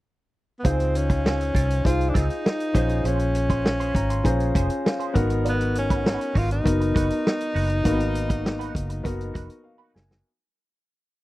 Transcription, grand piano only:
0.64 1.63 D#4 medium
0.64 1.63 F4 medium
0.64 1.63 G#4 medium
0.64 1.64 C5 medium
1.84 2.75 D#4 medium
1.84 2.73 F4 medium
1.84 2.73 G#4 medium
1.84 2.74 C5 medium
2.73 3.73 C#4 medium
2.73 3.74 F4 medium
2.73 3.74 G#4 medium
2.73 3.74 C5 medium
3.95 4.09 A#5 medium
4.10 4.24 C6 medium
4.24 5.15 C#4 medium
4.24 5.15 F4 medium
4.24 5.15 G#4 medium
4.24 5.16 C5 medium
4.24 4.53 A#5 medium
4.55 4.83 G#5 medium
4.84 5.13 F5 medium
5.13 6.13 B3 medium
5.13 6.13 D#4 medium
5.13 6.14 F#4 medium
5.13 6.14 A#4 loud
5.13 5.43 F#5 medium
6.64 7.63 B3 medium
6.64 7.63 D#4 medium
6.64 7.64 F#4 medium
6.64 7.64 A#4 medium
7.84 7.91 A#3 medium
7.84 8.84 D#4 medium
7.84 8.84 F#4 medium
7.84 8.84 A#4 medium
7.91 8.87 B3 medium
9.03 10.03 B3 medium
9.03 10.03 D#4 medium
9.03 10.03 F#4 medium
9.03 10.03 A#4 medium
9.64 9.92 F5 medium
9.95 10.23 G#5 medium

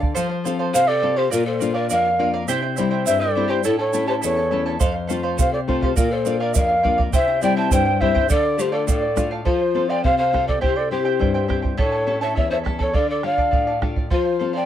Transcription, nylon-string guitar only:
0.00 0.13 D3 medium
0.00 0.16 A4 medium
0.16 0.73 F3 medium
0.45 0.92 C4 soft
0.45 0.92 F4 soft
0.45 0.92 A4 medium
0.75 1.31 C3 medium
1.03 1.26 C4 soft
1.03 1.26 F4 soft
1.03 1.27 A4 medium
1.33 1.89 A#2 medium
1.61 2.08 A#3 soft
1.61 2.08 D4 soft
1.61 2.08 F4 medium
1.91 2.47 F2 medium
2.19 2.42 A#3 soft
2.19 2.43 D4 soft
2.19 2.43 F4 medium
2.48 3.04 C3 medium
2.78 3.24 G3 soft
2.78 3.25 C4 soft
2.78 3.25 E4 medium
3.07 3.63 G2 medium
3.37 3.59 G3 soft
3.37 3.59 C4 soft
3.37 3.60 E4 soft
3.66 4.21 A2 medium
3.94 4.40 A3 soft
3.94 4.40 C#4 soft
3.94 4.40 E4 medium
4.24 4.79 E2 medium
4.52 4.75 A3 soft
4.52 4.75 C#4 soft
4.52 4.75 E4 medium
4.81 5.37 F2 medium
5.10 5.56 A3 soft
5.10 5.57 C4 soft
5.10 5.57 F4 medium
5.38 5.95 C3 medium
5.68 5.91 A3 soft
5.68 5.91 C4 soft
5.68 5.91 F4 soft
5.98 6.54 A#2 medium
6.26 6.72 A#3 soft
6.26 6.73 D4 soft
6.26 6.73 F4 medium
6.56 7.12 F2 medium
6.84 7.07 A#3 soft
6.84 7.08 D4 soft
6.84 7.08 F4 medium
7.14 7.70 C3 medium
7.42 7.89 G3 soft
7.42 7.89 C4 soft
7.42 7.89 E4 medium
7.72 8.28 G2 medium
8.01 8.24 G3 soft
8.01 8.24 C4 soft
8.01 8.24 E4 soft
8.30 8.86 D3 medium
8.58 9.05 A3 soft
8.58 9.05 D4 soft
8.58 9.06 F4 soft
8.87 9.44 A2 medium
9.16 9.40 A3 soft
9.16 9.40 D4 soft
9.16 9.40 F4 medium
9.45 10.02 F3 medium
9.75 10.21 C4 soft
9.75 10.22 F4 soft
9.75 10.22 A4 soft
10.04 10.60 C3 medium
10.33 10.56 C4 soft
10.33 10.57 F4 soft
10.33 10.57 A4 soft
10.62 11.18 C3 medium
10.91 11.38 C4 soft
10.91 11.38 E4 soft
10.91 11.38 G4 soft
11.19 11.76 G2 medium
11.48 11.72 C4 soft
11.48 11.72 E4 soft
11.48 11.73 G4 soft
11.77 12.34 A2 medium
12.07 12.54 C#4 soft
12.07 12.54 E4 soft
12.07 12.54 A4 soft
12.37 12.94 E2 medium
12.66 12.89 C#4 soft
12.66 12.89 E4 soft
12.66 12.90 A4 medium
12.95 13.51 D3 medium
13.23 13.70 D4 soft
13.23 13.70 F4 soft
13.23 13.71 A4 soft
13.53 14.10 A2 medium
13.82 14.05 D4 soft
13.82 14.06 F4 soft
13.82 14.06 A4 soft
14.11 14.65 F3 medium
14.41 14.65 C4 soft
14.41 14.65 F4 soft
14.41 14.65 A4 soft

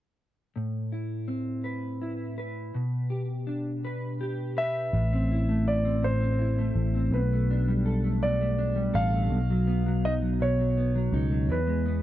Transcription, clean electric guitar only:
0.56 2.74 A2 soft
0.92 2.00 E4 soft
1.28 2.82 C4 soft
1.64 2.37 B4 soft
2.02 2.82 E4 soft
2.38 3.84 B4 soft
2.74 4.93 B2 soft
3.10 4.20 G4 soft
3.47 5.01 D4 soft
3.85 4.56 B4 soft
4.21 5.01 G4 soft
4.57 5.16 B4 soft
4.94 6.02 A2 medium
5.13 5.84 C4 soft
5.32 6.38 E4 soft
5.49 6.58 A3 soft
5.85 6.19 C4 soft
6.03 7.12 A2 medium
6.21 6.93 C4 soft
6.39 7.20 E4 soft
6.58 7.33 A3 medium
6.95 7.20 C4 soft
7.14 8.21 B2 medium
7.33 8.03 A3 soft
7.51 8.57 D4 soft
7.68 8.74 G3 soft
7.86 8.93 A4 soft
8.04 8.40 A3 soft
8.23 9.31 B2 medium
8.41 9.13 A3 soft
8.58 9.39 D4 soft
8.76 9.38 G3 soft
8.94 9.38 A4 soft
9.14 9.39 A3 soft
9.32 10.39 B2 medium
9.50 9.85 F#3 soft
9.67 10.77 B3 soft
9.86 10.21 F#3 medium
10.05 11.12 D#4 medium
10.22 10.58 F#3 soft
10.40 11.49 B2 medium
10.59 10.94 F#3 soft
10.77 11.85 B3 soft
10.95 11.30 F#3 medium
11.14 11.57 D#4 medium
11.31 11.57 F#3 soft
11.50 12.03 E3 medium
11.67 12.03 G#3 soft
11.86 12.03 B3 soft

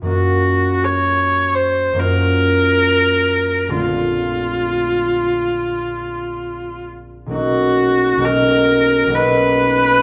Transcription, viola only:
0.08 0.86 F#4 medium
0.84 1.56 C#5 medium
1.54 2.01 C5 medium
2.00 3.75 A#4 medium
3.76 6.85 F4 medium
7.35 8.26 F#4 medium
8.25 9.16 A#4 medium
9.14 10.02 B4 medium

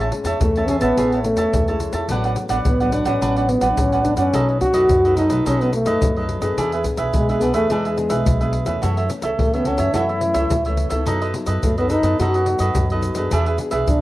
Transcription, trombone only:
0.40 0.68 A3 medium
0.67 0.79 C#4 medium
0.80 1.20 B3 medium
1.23 1.76 A3 medium
2.66 2.95 B3 medium
2.93 3.08 D4 medium
3.07 3.50 C#4 medium
3.49 3.70 B3 medium
3.71 3.80 D4 medium
3.78 4.06 C#4 medium
4.04 4.17 D4 medium
4.18 4.58 C#4 medium
4.61 5.14 F#4 loud
5.17 5.44 D#4 medium
5.47 5.63 C#4 medium
5.61 5.73 B3 medium
5.74 6.26 A3 medium
7.15 7.42 G#3 medium
7.41 7.54 B3 medium
7.55 7.73 A3 medium
7.71 8.55 G#3 medium
9.40 9.57 A3 medium
9.56 9.69 B3 medium
9.68 9.97 C#4 medium
9.95 10.79 E4 loud
11.64 11.77 A3 medium
11.78 11.92 B3 medium
11.90 12.19 D#4 medium
12.20 13.00 F#4 medium
13.88 14.01 D4 medium

